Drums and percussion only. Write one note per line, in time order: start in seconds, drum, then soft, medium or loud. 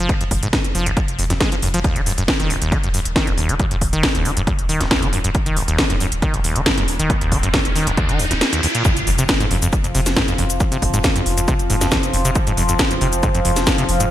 0.09 kick loud
0.09 closed hi-hat medium
0.21 closed hi-hat medium
0.31 kick medium
0.31 open hi-hat loud
0.43 closed hi-hat medium
0.53 kick loud
0.53 snare loud
0.53 closed hi-hat medium
0.64 closed hi-hat medium
0.75 open hi-hat medium
0.86 closed hi-hat medium
0.97 kick loud
0.97 closed hi-hat medium
1.08 closed hi-hat medium
1.19 open hi-hat loud
1.30 snare soft
1.30 closed hi-hat medium
1.40 kick loud
1.40 snare loud
1.40 closed hi-hat medium
1.52 closed hi-hat medium
1.62 open hi-hat loud
1.74 closed hi-hat medium
1.84 kick loud
1.84 closed hi-hat medium
1.96 closed hi-hat medium
2.06 open hi-hat loud
2.18 closed hi-hat medium
2.28 kick loud
2.28 snare loud
2.28 closed hi-hat medium
2.40 closed hi-hat medium
2.50 open hi-hat medium
2.62 closed hi-hat medium
2.72 kick loud
2.72 closed hi-hat medium
2.83 closed hi-hat medium
2.94 open hi-hat loud
3.05 closed hi-hat medium
3.16 kick loud
3.16 snare loud
3.16 closed hi-hat medium
3.27 closed hi-hat medium
3.38 open hi-hat medium
3.49 closed hi-hat medium
3.60 kick loud
3.60 closed hi-hat medium
3.71 closed hi-hat medium
3.81 kick medium
3.81 open hi-hat loud
3.93 closed hi-hat medium
4.03 kick loud
4.03 snare loud
4.03 closed hi-hat medium
4.15 closed hi-hat medium
4.25 open hi-hat medium
4.37 closed hi-hat medium
4.47 kick loud
4.47 closed hi-hat medium
4.59 closed hi-hat medium
4.69 open hi-hat loud
4.81 snare soft
4.81 closed hi-hat medium
4.91 kick loud
4.91 snare loud
4.91 closed hi-hat medium
5.02 closed hi-hat medium
5.13 open hi-hat medium
5.24 closed hi-hat medium
5.35 kick loud
5.35 closed hi-hat medium
5.46 closed hi-hat medium
5.57 open hi-hat loud
5.68 closed hi-hat medium
5.78 kick loud
5.78 snare loud
5.78 closed hi-hat medium
5.90 closed hi-hat medium
6.00 open hi-hat medium
6.12 closed hi-hat medium
6.22 kick loud
6.22 closed hi-hat medium
6.34 closed hi-hat medium
6.44 open hi-hat loud
6.56 closed hi-hat medium
6.66 kick loud
6.66 snare loud
6.66 closed hi-hat medium
6.78 closed hi-hat medium
6.88 open hi-hat medium
6.99 closed hi-hat medium
7.10 kick loud
7.10 closed hi-hat medium
7.21 closed hi-hat medium
7.32 kick medium
7.32 open hi-hat loud
7.43 closed hi-hat medium
7.54 kick loud
7.54 snare loud
7.54 closed hi-hat medium
7.65 closed hi-hat medium
7.75 open hi-hat medium
7.87 closed hi-hat medium
7.97 kick loud
7.97 closed hi-hat medium
8.09 closed hi-hat medium
8.19 open hi-hat loud
8.31 snare soft
8.31 closed hi-hat medium
8.41 snare loud
8.41 closed hi-hat medium
8.53 closed hi-hat medium
8.63 open hi-hat medium
8.75 closed hi-hat medium
8.85 kick loud
8.85 closed hi-hat medium
8.85 shaker medium
8.97 closed hi-hat medium
8.97 shaker soft
9.07 open hi-hat loud
9.19 closed hi-hat medium
9.19 shaker medium
9.29 kick loud
9.29 snare loud
9.29 closed hi-hat medium
9.29 shaker medium
9.40 closed hi-hat medium
9.40 shaker soft
9.51 open hi-hat medium
9.62 closed hi-hat medium
9.62 shaker medium
9.73 kick loud
9.73 closed hi-hat medium
9.73 shaker soft
9.84 closed hi-hat medium
9.84 shaker soft
9.95 open hi-hat loud
10.06 snare medium
10.06 closed hi-hat medium
10.06 shaker medium
10.17 kick loud
10.17 snare loud
10.17 closed hi-hat medium
10.17 shaker medium
10.28 closed hi-hat medium
10.28 shaker soft
10.38 open hi-hat medium
10.50 closed hi-hat medium
10.50 shaker medium
10.60 kick loud
10.60 closed hi-hat medium
10.60 shaker medium
10.72 closed hi-hat medium
10.72 shaker soft
10.82 kick medium
10.82 open hi-hat loud
10.94 closed hi-hat medium
10.94 shaker medium
11.04 kick loud
11.04 snare loud
11.04 closed hi-hat medium
11.04 shaker soft
11.16 closed hi-hat medium
11.16 shaker soft
11.26 open hi-hat loud
11.38 closed hi-hat medium
11.38 shaker medium
11.48 kick loud
11.48 closed hi-hat medium
11.48 shaker soft
11.59 closed hi-hat medium
11.59 shaker soft
11.70 open hi-hat loud
11.81 snare medium
11.81 closed hi-hat medium
11.81 shaker medium
11.92 kick loud
11.92 snare loud
11.92 closed hi-hat medium
11.92 shaker medium
12.03 closed hi-hat medium
12.03 shaker soft
12.14 open hi-hat loud
12.25 closed hi-hat medium
12.25 shaker medium
12.35 kick loud
12.35 closed hi-hat medium
12.35 shaker medium
12.47 closed hi-hat medium
12.47 shaker soft
12.57 open hi-hat loud
12.69 closed hi-hat medium
12.69 shaker medium
12.79 kick loud
12.79 snare loud
12.79 closed hi-hat medium
12.79 shaker soft
12.91 closed hi-hat medium
12.91 shaker soft
13.01 open hi-hat medium
13.13 closed hi-hat medium
13.13 shaker medium
13.23 kick loud
13.23 closed hi-hat medium
13.23 shaker medium
13.35 closed hi-hat medium
13.35 shaker soft
13.45 open hi-hat loud
13.56 snare medium
13.56 closed hi-hat medium
13.56 shaker medium
13.67 kick loud
13.67 snare loud
13.67 closed hi-hat medium
13.67 shaker medium
13.78 closed hi-hat medium
13.78 shaker soft
13.89 open hi-hat loud
14.00 closed hi-hat medium
14.00 shaker medium